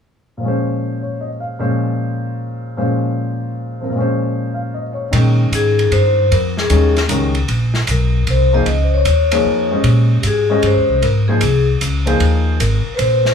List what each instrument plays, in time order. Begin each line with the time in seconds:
0.37 upright piano A#2 F3
0.43 upright piano G#3 C#4
0.48 upright piano C5
1.01 upright piano C#5
1.21 upright piano D#5
1.40 upright piano F5
1.59 upright piano A#2 F3 G#3 C#4 C5
2.77 upright piano A#2 F3 G#3 C#4 C5
3.81 upright piano F3 C4 A#4
3.90 upright piano A#2 F3
3.95 upright piano G#3 C#4
4.01 upright piano C5
4.54 upright piano F5
4.74 upright piano D#5
4.93 upright piano C#5
5.11 upright bass A#2, upright piano D#3 G#3 C#4 A#4 G5, ride
5.51 upright bass G#2, vibraphone G#4, hi-hat pedal, ride
5.79 ride
5.91 upright bass G2, vibraphone C5, ride
6.31 upright bass F2, vibraphone A#4, ride
6.57 vibraphone G#4, snare
6.70 upright bass D#2, upright piano D#3 G#3 C#4 G4 A#4, hi-hat pedal, ride
6.96 snare, ride
7.08 upright bass C#2, upright piano D#3 G#3 C#4 G4 A#4, hi-hat pedal, ride
7.35 ride
7.48 upright bass A#1, ride
7.74 snare
7.87 upright bass B1, vibraphone A#4, hi-hat pedal, ride
8.27 upright bass C2, vibraphone C5, ride
8.53 upright piano F3 A#3 D#4 G#4 C5, vibraphone D#5
8.66 upright bass C#2, ride
8.84 vibraphone C5
8.94 vibraphone C#5
9.05 upright bass D#2, hi-hat pedal, ride
9.31 upright piano F3 A#3 D#4 G#4 C#5, ride
9.45 upright bass F2
9.71 upright piano G#3 C#4 G4 C5 D#5
9.84 upright bass A#2, ride
10.20 upright bass G#2, vibraphone G4, hi-hat pedal, ride
10.27 vibraphone G#4
10.50 upright piano G#3 C#4 G4 C5 D#5
10.63 upright bass G2, vibraphone C5, ride
10.76 upright bass D#2
10.89 upright bass C2
11.02 upright bass G#2, vibraphone A#4, ride
11.28 upright piano F3 A#3 D#4 G#4 C5, vibraphone G#4
11.41 upright bass C2, hi-hat pedal, ride
11.81 upright bass C#2, hi-hat pedal, ride
12.06 upright piano F3 A#3 D#4 G#4 C5, ride
12.20 upright bass D#2, ride
12.60 upright bass G#1, vibraphone A#4, hi-hat pedal, ride
12.94 vibraphone B4 C5
12.99 upright bass A#1, ride
13.25 snare